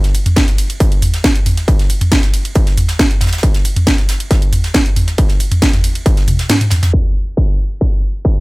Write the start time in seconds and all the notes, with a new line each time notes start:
0.04 snare, closed hi-hat, ride
0.15 closed hi-hat, open hi-hat, ride
0.26 closed hi-hat, mid tom, ride
0.36 kick, snare, closed hi-hat, ride
0.48 snare, closed hi-hat, ride
0.58 closed hi-hat, open hi-hat, ride
0.70 closed hi-hat, ride
0.80 kick, closed hi-hat, ride
0.92 closed hi-hat, ride
1.02 closed hi-hat, mid tom, open hi-hat, ride
1.14 snare, closed hi-hat, ride
1.24 kick, snare, closed hi-hat, ride
1.36 closed hi-hat, ride
1.46 closed hi-hat, mid tom, open hi-hat, ride
1.57 snare, closed hi-hat, ride
1.68 kick, closed hi-hat, ride
1.79 snare, closed hi-hat, ride
1.89 closed hi-hat, open hi-hat, ride
2.01 closed hi-hat, mid tom, ride
2.12 kick, snare, closed hi-hat, ride
2.23 snare, closed hi-hat, ride
2.34 closed hi-hat, open hi-hat, ride
2.45 closed hi-hat, ride
2.55 kick, closed hi-hat, ride
2.67 snare, closed hi-hat, ride
2.77 closed hi-hat, mid tom, open hi-hat, ride
2.88 snare, closed hi-hat, ride
2.99 kick, snare, closed hi-hat, ride
3.11 closed hi-hat, ride
3.21 snare, closed hi-hat, mid tom, open hi-hat, ride
3.27 snare, closed hi-hat
3.33 snare, closed hi-hat, ride
3.38 snare, closed hi-hat
3.43 kick, closed hi-hat, ride
3.54 snare, closed hi-hat, ride
3.65 closed hi-hat, open hi-hat, ride
3.76 closed hi-hat, mid tom, ride
3.87 kick, snare, closed hi-hat, ride
3.98 snare, closed hi-hat, ride
4.09 snare, closed hi-hat, open hi-hat, ride
4.20 closed hi-hat, ride
4.31 kick, snare, closed hi-hat, ride
4.42 closed hi-hat, ride
4.52 closed hi-hat, mid tom, open hi-hat, ride
4.64 snare, closed hi-hat, ride
4.74 kick, snare, closed hi-hat, ride
4.86 closed hi-hat, ride
4.96 closed hi-hat, mid tom, open hi-hat, ride
5.07 snare, closed hi-hat, ride
5.18 kick, closed hi-hat, ride
5.29 snare, closed hi-hat, ride
5.40 closed hi-hat, open hi-hat, ride
5.52 closed hi-hat, mid tom, ride
5.62 kick, snare, closed hi-hat, ride
5.73 snare, closed hi-hat, mid tom, ride
5.84 closed hi-hat, open hi-hat, ride
5.95 closed hi-hat, ride
6.06 kick, closed hi-hat, ride
6.17 snare, closed hi-hat, ride
6.28 closed hi-hat, mid tom, open hi-hat, high tom, ride
6.39 snare, closed hi-hat, ride
6.49 snare, closed hi-hat, mid tom, ride
6.61 closed hi-hat, mid tom, ride
6.70 snare, closed hi-hat, mid tom, open hi-hat, ride
6.83 snare, closed hi-hat, mid tom, ride
6.93 kick
7.37 kick
7.81 kick
8.25 kick